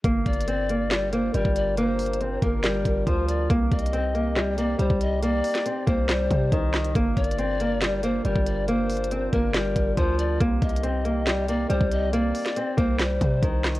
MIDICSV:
0, 0, Header, 1, 6, 480
1, 0, Start_track
1, 0, Key_signature, -3, "minor"
1, 0, Tempo, 431655
1, 51, Time_signature, 4, 2, 24, 8
1, 15343, End_track
2, 0, Start_track
2, 0, Title_t, "Pan flute"
2, 0, Program_c, 0, 75
2, 290, Note_on_c, 0, 74, 101
2, 1206, Note_off_c, 0, 74, 0
2, 1254, Note_on_c, 0, 72, 70
2, 1481, Note_off_c, 0, 72, 0
2, 1487, Note_on_c, 0, 70, 91
2, 1717, Note_off_c, 0, 70, 0
2, 1732, Note_on_c, 0, 74, 81
2, 1960, Note_off_c, 0, 74, 0
2, 1967, Note_on_c, 0, 71, 94
2, 2089, Note_off_c, 0, 71, 0
2, 2089, Note_on_c, 0, 72, 94
2, 2646, Note_off_c, 0, 72, 0
2, 2694, Note_on_c, 0, 70, 83
2, 3369, Note_off_c, 0, 70, 0
2, 3411, Note_on_c, 0, 72, 95
2, 3639, Note_off_c, 0, 72, 0
2, 3649, Note_on_c, 0, 74, 82
2, 3878, Note_off_c, 0, 74, 0
2, 4134, Note_on_c, 0, 75, 93
2, 5048, Note_off_c, 0, 75, 0
2, 5090, Note_on_c, 0, 74, 85
2, 5319, Note_off_c, 0, 74, 0
2, 5328, Note_on_c, 0, 72, 77
2, 5558, Note_off_c, 0, 72, 0
2, 5575, Note_on_c, 0, 75, 82
2, 5801, Note_off_c, 0, 75, 0
2, 5815, Note_on_c, 0, 74, 106
2, 6490, Note_off_c, 0, 74, 0
2, 6531, Note_on_c, 0, 72, 90
2, 7687, Note_off_c, 0, 72, 0
2, 7969, Note_on_c, 0, 74, 105
2, 8885, Note_off_c, 0, 74, 0
2, 8933, Note_on_c, 0, 72, 71
2, 9160, Note_off_c, 0, 72, 0
2, 9166, Note_on_c, 0, 70, 86
2, 9397, Note_off_c, 0, 70, 0
2, 9412, Note_on_c, 0, 74, 79
2, 9640, Note_off_c, 0, 74, 0
2, 9646, Note_on_c, 0, 72, 96
2, 10325, Note_off_c, 0, 72, 0
2, 10373, Note_on_c, 0, 70, 81
2, 11049, Note_off_c, 0, 70, 0
2, 11090, Note_on_c, 0, 72, 94
2, 11319, Note_off_c, 0, 72, 0
2, 11328, Note_on_c, 0, 74, 84
2, 11558, Note_off_c, 0, 74, 0
2, 11811, Note_on_c, 0, 75, 89
2, 12727, Note_off_c, 0, 75, 0
2, 12769, Note_on_c, 0, 74, 86
2, 12998, Note_off_c, 0, 74, 0
2, 13007, Note_on_c, 0, 72, 75
2, 13237, Note_off_c, 0, 72, 0
2, 13253, Note_on_c, 0, 75, 85
2, 13480, Note_off_c, 0, 75, 0
2, 13494, Note_on_c, 0, 74, 102
2, 14169, Note_off_c, 0, 74, 0
2, 14208, Note_on_c, 0, 72, 90
2, 15343, Note_off_c, 0, 72, 0
2, 15343, End_track
3, 0, Start_track
3, 0, Title_t, "French horn section"
3, 0, Program_c, 1, 60
3, 51, Note_on_c, 1, 55, 82
3, 52, Note_on_c, 1, 62, 76
3, 52, Note_on_c, 1, 65, 76
3, 52, Note_on_c, 1, 70, 94
3, 3853, Note_off_c, 1, 55, 0
3, 3853, Note_off_c, 1, 62, 0
3, 3853, Note_off_c, 1, 65, 0
3, 3853, Note_off_c, 1, 70, 0
3, 3891, Note_on_c, 1, 48, 83
3, 3891, Note_on_c, 1, 60, 76
3, 3891, Note_on_c, 1, 63, 74
3, 3891, Note_on_c, 1, 67, 95
3, 7693, Note_off_c, 1, 48, 0
3, 7693, Note_off_c, 1, 60, 0
3, 7693, Note_off_c, 1, 63, 0
3, 7693, Note_off_c, 1, 67, 0
3, 7732, Note_on_c, 1, 55, 84
3, 7732, Note_on_c, 1, 62, 77
3, 7732, Note_on_c, 1, 65, 77
3, 7732, Note_on_c, 1, 70, 92
3, 11533, Note_off_c, 1, 55, 0
3, 11533, Note_off_c, 1, 62, 0
3, 11533, Note_off_c, 1, 65, 0
3, 11533, Note_off_c, 1, 70, 0
3, 11571, Note_on_c, 1, 48, 85
3, 11571, Note_on_c, 1, 60, 77
3, 11571, Note_on_c, 1, 63, 76
3, 11571, Note_on_c, 1, 67, 93
3, 15343, Note_off_c, 1, 48, 0
3, 15343, Note_off_c, 1, 60, 0
3, 15343, Note_off_c, 1, 63, 0
3, 15343, Note_off_c, 1, 67, 0
3, 15343, End_track
4, 0, Start_track
4, 0, Title_t, "Nylon-string guitar"
4, 0, Program_c, 2, 24
4, 53, Note_on_c, 2, 58, 105
4, 503, Note_off_c, 2, 58, 0
4, 532, Note_on_c, 2, 60, 81
4, 749, Note_off_c, 2, 60, 0
4, 778, Note_on_c, 2, 58, 70
4, 992, Note_off_c, 2, 58, 0
4, 1008, Note_on_c, 2, 55, 91
4, 1227, Note_off_c, 2, 55, 0
4, 1253, Note_on_c, 2, 58, 77
4, 1469, Note_off_c, 2, 58, 0
4, 1496, Note_on_c, 2, 55, 89
4, 1945, Note_off_c, 2, 55, 0
4, 1976, Note_on_c, 2, 58, 98
4, 2425, Note_off_c, 2, 58, 0
4, 2455, Note_on_c, 2, 60, 79
4, 2670, Note_off_c, 2, 60, 0
4, 2693, Note_on_c, 2, 58, 82
4, 2909, Note_off_c, 2, 58, 0
4, 2930, Note_on_c, 2, 55, 85
4, 3382, Note_off_c, 2, 55, 0
4, 3409, Note_on_c, 2, 53, 79
4, 3861, Note_off_c, 2, 53, 0
4, 3889, Note_on_c, 2, 58, 109
4, 4341, Note_off_c, 2, 58, 0
4, 4370, Note_on_c, 2, 60, 81
4, 4587, Note_off_c, 2, 60, 0
4, 4607, Note_on_c, 2, 58, 71
4, 4826, Note_off_c, 2, 58, 0
4, 4847, Note_on_c, 2, 55, 90
4, 5066, Note_off_c, 2, 55, 0
4, 5095, Note_on_c, 2, 58, 79
4, 5310, Note_off_c, 2, 58, 0
4, 5324, Note_on_c, 2, 55, 98
4, 5779, Note_off_c, 2, 55, 0
4, 5811, Note_on_c, 2, 58, 98
4, 6262, Note_off_c, 2, 58, 0
4, 6294, Note_on_c, 2, 60, 78
4, 6510, Note_off_c, 2, 60, 0
4, 6523, Note_on_c, 2, 58, 87
4, 6744, Note_off_c, 2, 58, 0
4, 6771, Note_on_c, 2, 55, 85
4, 7222, Note_off_c, 2, 55, 0
4, 7260, Note_on_c, 2, 51, 80
4, 7707, Note_off_c, 2, 51, 0
4, 7733, Note_on_c, 2, 58, 107
4, 8184, Note_off_c, 2, 58, 0
4, 8212, Note_on_c, 2, 60, 80
4, 8429, Note_off_c, 2, 60, 0
4, 8458, Note_on_c, 2, 58, 67
4, 8672, Note_off_c, 2, 58, 0
4, 8690, Note_on_c, 2, 55, 94
4, 8907, Note_off_c, 2, 55, 0
4, 8934, Note_on_c, 2, 58, 77
4, 9150, Note_off_c, 2, 58, 0
4, 9176, Note_on_c, 2, 55, 88
4, 9625, Note_off_c, 2, 55, 0
4, 9655, Note_on_c, 2, 58, 93
4, 10105, Note_off_c, 2, 58, 0
4, 10136, Note_on_c, 2, 60, 77
4, 10351, Note_off_c, 2, 60, 0
4, 10371, Note_on_c, 2, 58, 83
4, 10588, Note_off_c, 2, 58, 0
4, 10607, Note_on_c, 2, 55, 84
4, 11060, Note_off_c, 2, 55, 0
4, 11088, Note_on_c, 2, 53, 82
4, 11541, Note_off_c, 2, 53, 0
4, 11568, Note_on_c, 2, 58, 104
4, 12020, Note_off_c, 2, 58, 0
4, 12048, Note_on_c, 2, 60, 80
4, 12267, Note_off_c, 2, 60, 0
4, 12286, Note_on_c, 2, 58, 69
4, 12505, Note_off_c, 2, 58, 0
4, 12526, Note_on_c, 2, 55, 88
4, 12746, Note_off_c, 2, 55, 0
4, 12776, Note_on_c, 2, 58, 77
4, 12991, Note_off_c, 2, 58, 0
4, 13005, Note_on_c, 2, 55, 98
4, 13459, Note_off_c, 2, 55, 0
4, 13489, Note_on_c, 2, 58, 100
4, 13941, Note_off_c, 2, 58, 0
4, 13974, Note_on_c, 2, 60, 77
4, 14190, Note_off_c, 2, 60, 0
4, 14202, Note_on_c, 2, 58, 86
4, 14423, Note_off_c, 2, 58, 0
4, 14451, Note_on_c, 2, 55, 79
4, 14902, Note_off_c, 2, 55, 0
4, 14939, Note_on_c, 2, 51, 76
4, 15343, Note_off_c, 2, 51, 0
4, 15343, End_track
5, 0, Start_track
5, 0, Title_t, "808-style bass"
5, 0, Program_c, 3, 38
5, 52, Note_on_c, 3, 31, 115
5, 282, Note_off_c, 3, 31, 0
5, 291, Note_on_c, 3, 31, 102
5, 1447, Note_off_c, 3, 31, 0
5, 1492, Note_on_c, 3, 31, 111
5, 1604, Note_off_c, 3, 31, 0
5, 1611, Note_on_c, 3, 31, 104
5, 2648, Note_off_c, 3, 31, 0
5, 2691, Note_on_c, 3, 31, 108
5, 3152, Note_off_c, 3, 31, 0
5, 3171, Note_on_c, 3, 31, 102
5, 3402, Note_off_c, 3, 31, 0
5, 3411, Note_on_c, 3, 38, 111
5, 3872, Note_off_c, 3, 38, 0
5, 3892, Note_on_c, 3, 36, 113
5, 4122, Note_off_c, 3, 36, 0
5, 4131, Note_on_c, 3, 36, 101
5, 5287, Note_off_c, 3, 36, 0
5, 5331, Note_on_c, 3, 36, 109
5, 5446, Note_off_c, 3, 36, 0
5, 5451, Note_on_c, 3, 36, 105
5, 6027, Note_off_c, 3, 36, 0
5, 6531, Note_on_c, 3, 36, 108
5, 6992, Note_off_c, 3, 36, 0
5, 7012, Note_on_c, 3, 48, 105
5, 7242, Note_off_c, 3, 48, 0
5, 7251, Note_on_c, 3, 36, 107
5, 7712, Note_off_c, 3, 36, 0
5, 7732, Note_on_c, 3, 31, 111
5, 7962, Note_off_c, 3, 31, 0
5, 7971, Note_on_c, 3, 31, 104
5, 9126, Note_off_c, 3, 31, 0
5, 9171, Note_on_c, 3, 31, 108
5, 9284, Note_off_c, 3, 31, 0
5, 9291, Note_on_c, 3, 31, 101
5, 10328, Note_off_c, 3, 31, 0
5, 10371, Note_on_c, 3, 31, 107
5, 10832, Note_off_c, 3, 31, 0
5, 10851, Note_on_c, 3, 31, 101
5, 11081, Note_off_c, 3, 31, 0
5, 11090, Note_on_c, 3, 38, 108
5, 11551, Note_off_c, 3, 38, 0
5, 11571, Note_on_c, 3, 36, 111
5, 11801, Note_off_c, 3, 36, 0
5, 11810, Note_on_c, 3, 36, 99
5, 12966, Note_off_c, 3, 36, 0
5, 13010, Note_on_c, 3, 36, 107
5, 13123, Note_off_c, 3, 36, 0
5, 13130, Note_on_c, 3, 36, 103
5, 13707, Note_off_c, 3, 36, 0
5, 14210, Note_on_c, 3, 36, 107
5, 14671, Note_off_c, 3, 36, 0
5, 14691, Note_on_c, 3, 48, 102
5, 14921, Note_off_c, 3, 48, 0
5, 14930, Note_on_c, 3, 36, 104
5, 15343, Note_off_c, 3, 36, 0
5, 15343, End_track
6, 0, Start_track
6, 0, Title_t, "Drums"
6, 51, Note_on_c, 9, 42, 92
6, 52, Note_on_c, 9, 36, 125
6, 163, Note_off_c, 9, 36, 0
6, 163, Note_off_c, 9, 42, 0
6, 291, Note_on_c, 9, 36, 93
6, 292, Note_on_c, 9, 42, 50
6, 372, Note_off_c, 9, 42, 0
6, 372, Note_on_c, 9, 42, 67
6, 402, Note_off_c, 9, 36, 0
6, 453, Note_off_c, 9, 42, 0
6, 453, Note_on_c, 9, 42, 82
6, 532, Note_off_c, 9, 42, 0
6, 532, Note_on_c, 9, 42, 81
6, 643, Note_off_c, 9, 42, 0
6, 772, Note_on_c, 9, 42, 70
6, 883, Note_off_c, 9, 42, 0
6, 1011, Note_on_c, 9, 38, 112
6, 1012, Note_on_c, 9, 42, 78
6, 1018, Note_on_c, 9, 39, 87
6, 1123, Note_off_c, 9, 38, 0
6, 1123, Note_off_c, 9, 42, 0
6, 1130, Note_off_c, 9, 39, 0
6, 1252, Note_on_c, 9, 42, 85
6, 1363, Note_off_c, 9, 42, 0
6, 1492, Note_on_c, 9, 42, 85
6, 1603, Note_off_c, 9, 42, 0
6, 1611, Note_on_c, 9, 36, 93
6, 1722, Note_off_c, 9, 36, 0
6, 1732, Note_on_c, 9, 42, 97
6, 1843, Note_off_c, 9, 42, 0
6, 1972, Note_on_c, 9, 42, 92
6, 2083, Note_off_c, 9, 42, 0
6, 2212, Note_on_c, 9, 42, 49
6, 2212, Note_on_c, 9, 46, 88
6, 2292, Note_off_c, 9, 42, 0
6, 2292, Note_on_c, 9, 42, 67
6, 2323, Note_off_c, 9, 46, 0
6, 2371, Note_off_c, 9, 42, 0
6, 2371, Note_on_c, 9, 42, 85
6, 2451, Note_off_c, 9, 42, 0
6, 2451, Note_on_c, 9, 42, 79
6, 2562, Note_off_c, 9, 42, 0
6, 2691, Note_on_c, 9, 36, 89
6, 2691, Note_on_c, 9, 42, 71
6, 2802, Note_off_c, 9, 36, 0
6, 2802, Note_off_c, 9, 42, 0
6, 2931, Note_on_c, 9, 38, 112
6, 2931, Note_on_c, 9, 42, 77
6, 2938, Note_on_c, 9, 39, 90
6, 3042, Note_off_c, 9, 38, 0
6, 3043, Note_off_c, 9, 42, 0
6, 3049, Note_off_c, 9, 39, 0
6, 3171, Note_on_c, 9, 36, 94
6, 3172, Note_on_c, 9, 42, 85
6, 3283, Note_off_c, 9, 36, 0
6, 3283, Note_off_c, 9, 42, 0
6, 3411, Note_on_c, 9, 36, 96
6, 3412, Note_on_c, 9, 42, 86
6, 3522, Note_off_c, 9, 36, 0
6, 3523, Note_off_c, 9, 42, 0
6, 3652, Note_on_c, 9, 42, 99
6, 3763, Note_off_c, 9, 42, 0
6, 3891, Note_on_c, 9, 36, 124
6, 3891, Note_on_c, 9, 42, 87
6, 4002, Note_off_c, 9, 36, 0
6, 4002, Note_off_c, 9, 42, 0
6, 4131, Note_on_c, 9, 36, 91
6, 4131, Note_on_c, 9, 42, 49
6, 4211, Note_off_c, 9, 42, 0
6, 4211, Note_on_c, 9, 42, 66
6, 4242, Note_off_c, 9, 36, 0
6, 4291, Note_off_c, 9, 42, 0
6, 4291, Note_on_c, 9, 42, 81
6, 4371, Note_off_c, 9, 42, 0
6, 4371, Note_on_c, 9, 42, 78
6, 4483, Note_off_c, 9, 42, 0
6, 4611, Note_on_c, 9, 42, 71
6, 4723, Note_off_c, 9, 42, 0
6, 4851, Note_on_c, 9, 38, 109
6, 4851, Note_on_c, 9, 42, 77
6, 4858, Note_on_c, 9, 39, 94
6, 4962, Note_off_c, 9, 38, 0
6, 4963, Note_off_c, 9, 42, 0
6, 4969, Note_off_c, 9, 39, 0
6, 5092, Note_on_c, 9, 42, 83
6, 5203, Note_off_c, 9, 42, 0
6, 5332, Note_on_c, 9, 42, 85
6, 5443, Note_off_c, 9, 42, 0
6, 5451, Note_on_c, 9, 36, 93
6, 5562, Note_off_c, 9, 36, 0
6, 5571, Note_on_c, 9, 42, 102
6, 5682, Note_off_c, 9, 42, 0
6, 5812, Note_on_c, 9, 42, 91
6, 5923, Note_off_c, 9, 42, 0
6, 6052, Note_on_c, 9, 42, 68
6, 6052, Note_on_c, 9, 46, 88
6, 6163, Note_off_c, 9, 42, 0
6, 6163, Note_off_c, 9, 46, 0
6, 6172, Note_on_c, 9, 38, 73
6, 6172, Note_on_c, 9, 42, 68
6, 6283, Note_off_c, 9, 38, 0
6, 6283, Note_off_c, 9, 42, 0
6, 6292, Note_on_c, 9, 42, 78
6, 6403, Note_off_c, 9, 42, 0
6, 6531, Note_on_c, 9, 36, 92
6, 6531, Note_on_c, 9, 42, 72
6, 6643, Note_off_c, 9, 36, 0
6, 6643, Note_off_c, 9, 42, 0
6, 6771, Note_on_c, 9, 37, 68
6, 6771, Note_on_c, 9, 38, 114
6, 6772, Note_on_c, 9, 42, 80
6, 6778, Note_on_c, 9, 39, 94
6, 6882, Note_off_c, 9, 37, 0
6, 6882, Note_off_c, 9, 38, 0
6, 6883, Note_off_c, 9, 42, 0
6, 6890, Note_off_c, 9, 39, 0
6, 7012, Note_on_c, 9, 36, 94
6, 7012, Note_on_c, 9, 42, 88
6, 7123, Note_off_c, 9, 36, 0
6, 7123, Note_off_c, 9, 42, 0
6, 7251, Note_on_c, 9, 36, 100
6, 7252, Note_on_c, 9, 42, 83
6, 7362, Note_off_c, 9, 36, 0
6, 7363, Note_off_c, 9, 42, 0
6, 7492, Note_on_c, 9, 37, 96
6, 7492, Note_on_c, 9, 38, 100
6, 7492, Note_on_c, 9, 42, 62
6, 7499, Note_on_c, 9, 39, 76
6, 7603, Note_off_c, 9, 37, 0
6, 7603, Note_off_c, 9, 38, 0
6, 7603, Note_off_c, 9, 42, 0
6, 7610, Note_off_c, 9, 39, 0
6, 7612, Note_on_c, 9, 42, 100
6, 7723, Note_off_c, 9, 42, 0
6, 7732, Note_on_c, 9, 36, 123
6, 7732, Note_on_c, 9, 42, 88
6, 7843, Note_off_c, 9, 36, 0
6, 7843, Note_off_c, 9, 42, 0
6, 7971, Note_on_c, 9, 36, 97
6, 7972, Note_on_c, 9, 42, 49
6, 8051, Note_off_c, 9, 42, 0
6, 8051, Note_on_c, 9, 42, 65
6, 8082, Note_off_c, 9, 36, 0
6, 8131, Note_off_c, 9, 42, 0
6, 8131, Note_on_c, 9, 42, 83
6, 8211, Note_off_c, 9, 42, 0
6, 8211, Note_on_c, 9, 42, 79
6, 8323, Note_off_c, 9, 42, 0
6, 8452, Note_on_c, 9, 42, 73
6, 8563, Note_off_c, 9, 42, 0
6, 8691, Note_on_c, 9, 38, 114
6, 8691, Note_on_c, 9, 42, 77
6, 8698, Note_on_c, 9, 39, 89
6, 8802, Note_off_c, 9, 38, 0
6, 8803, Note_off_c, 9, 42, 0
6, 8809, Note_off_c, 9, 39, 0
6, 8931, Note_on_c, 9, 42, 85
6, 9042, Note_off_c, 9, 42, 0
6, 9172, Note_on_c, 9, 42, 83
6, 9283, Note_off_c, 9, 42, 0
6, 9291, Note_on_c, 9, 36, 95
6, 9402, Note_off_c, 9, 36, 0
6, 9412, Note_on_c, 9, 42, 100
6, 9523, Note_off_c, 9, 42, 0
6, 9651, Note_on_c, 9, 42, 89
6, 9763, Note_off_c, 9, 42, 0
6, 9891, Note_on_c, 9, 42, 47
6, 9891, Note_on_c, 9, 46, 89
6, 9971, Note_off_c, 9, 42, 0
6, 9971, Note_on_c, 9, 42, 67
6, 10002, Note_off_c, 9, 46, 0
6, 10051, Note_off_c, 9, 42, 0
6, 10051, Note_on_c, 9, 42, 82
6, 10131, Note_off_c, 9, 42, 0
6, 10131, Note_on_c, 9, 42, 78
6, 10242, Note_off_c, 9, 42, 0
6, 10371, Note_on_c, 9, 36, 90
6, 10371, Note_on_c, 9, 42, 72
6, 10482, Note_off_c, 9, 36, 0
6, 10482, Note_off_c, 9, 42, 0
6, 10610, Note_on_c, 9, 38, 110
6, 10611, Note_on_c, 9, 42, 77
6, 10617, Note_on_c, 9, 39, 89
6, 10721, Note_off_c, 9, 38, 0
6, 10722, Note_off_c, 9, 42, 0
6, 10728, Note_off_c, 9, 39, 0
6, 10850, Note_on_c, 9, 42, 87
6, 10851, Note_on_c, 9, 36, 97
6, 10962, Note_off_c, 9, 36, 0
6, 10962, Note_off_c, 9, 42, 0
6, 11090, Note_on_c, 9, 36, 102
6, 11090, Note_on_c, 9, 42, 87
6, 11201, Note_off_c, 9, 36, 0
6, 11201, Note_off_c, 9, 42, 0
6, 11330, Note_on_c, 9, 42, 101
6, 11441, Note_off_c, 9, 42, 0
6, 11570, Note_on_c, 9, 36, 120
6, 11570, Note_on_c, 9, 42, 91
6, 11681, Note_off_c, 9, 42, 0
6, 11682, Note_off_c, 9, 36, 0
6, 11810, Note_on_c, 9, 36, 96
6, 11811, Note_on_c, 9, 42, 51
6, 11890, Note_off_c, 9, 42, 0
6, 11890, Note_on_c, 9, 42, 64
6, 11921, Note_off_c, 9, 36, 0
6, 11970, Note_off_c, 9, 42, 0
6, 11970, Note_on_c, 9, 42, 84
6, 12050, Note_off_c, 9, 42, 0
6, 12050, Note_on_c, 9, 42, 77
6, 12161, Note_off_c, 9, 42, 0
6, 12290, Note_on_c, 9, 42, 72
6, 12401, Note_off_c, 9, 42, 0
6, 12529, Note_on_c, 9, 38, 112
6, 12529, Note_on_c, 9, 42, 76
6, 12536, Note_on_c, 9, 39, 92
6, 12640, Note_off_c, 9, 38, 0
6, 12641, Note_off_c, 9, 42, 0
6, 12647, Note_off_c, 9, 39, 0
6, 12770, Note_on_c, 9, 42, 86
6, 12881, Note_off_c, 9, 42, 0
6, 13010, Note_on_c, 9, 42, 88
6, 13121, Note_off_c, 9, 42, 0
6, 13130, Note_on_c, 9, 36, 94
6, 13241, Note_off_c, 9, 36, 0
6, 13251, Note_on_c, 9, 42, 100
6, 13362, Note_off_c, 9, 42, 0
6, 13491, Note_on_c, 9, 42, 89
6, 13602, Note_off_c, 9, 42, 0
6, 13731, Note_on_c, 9, 42, 68
6, 13731, Note_on_c, 9, 46, 86
6, 13842, Note_off_c, 9, 42, 0
6, 13842, Note_off_c, 9, 46, 0
6, 13851, Note_on_c, 9, 38, 72
6, 13851, Note_on_c, 9, 42, 68
6, 13962, Note_off_c, 9, 38, 0
6, 13962, Note_off_c, 9, 42, 0
6, 13971, Note_on_c, 9, 42, 79
6, 14082, Note_off_c, 9, 42, 0
6, 14210, Note_on_c, 9, 36, 90
6, 14211, Note_on_c, 9, 42, 73
6, 14322, Note_off_c, 9, 36, 0
6, 14322, Note_off_c, 9, 42, 0
6, 14450, Note_on_c, 9, 37, 68
6, 14450, Note_on_c, 9, 38, 113
6, 14451, Note_on_c, 9, 42, 77
6, 14457, Note_on_c, 9, 39, 91
6, 14562, Note_off_c, 9, 37, 0
6, 14562, Note_off_c, 9, 38, 0
6, 14562, Note_off_c, 9, 42, 0
6, 14569, Note_off_c, 9, 39, 0
6, 14691, Note_on_c, 9, 36, 93
6, 14691, Note_on_c, 9, 42, 85
6, 14802, Note_off_c, 9, 36, 0
6, 14802, Note_off_c, 9, 42, 0
6, 14930, Note_on_c, 9, 36, 101
6, 14931, Note_on_c, 9, 42, 88
6, 15041, Note_off_c, 9, 36, 0
6, 15042, Note_off_c, 9, 42, 0
6, 15171, Note_on_c, 9, 37, 95
6, 15171, Note_on_c, 9, 38, 96
6, 15171, Note_on_c, 9, 42, 63
6, 15178, Note_on_c, 9, 39, 78
6, 15282, Note_off_c, 9, 37, 0
6, 15282, Note_off_c, 9, 38, 0
6, 15282, Note_off_c, 9, 42, 0
6, 15289, Note_off_c, 9, 39, 0
6, 15290, Note_on_c, 9, 42, 101
6, 15343, Note_off_c, 9, 42, 0
6, 15343, End_track
0, 0, End_of_file